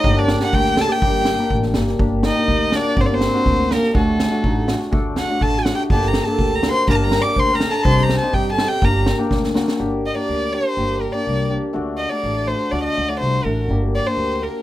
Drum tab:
SD |--oo-oo-|--o--ooo|--o---o-|--o---oo|
BD |o---o---|o---o---|o---o---|o---o---|

SD |--o---oo|--o---o-|-oo---o-|--o---o-|
BD |o---o---|o---o---|o---o---|o---o---|

SD |-oo---o-|--o-oooo|--------|--------|
BD |o---o---|o---o---|--------|--------|

SD |--------|--------|--------|
BD |--------|--------|--------|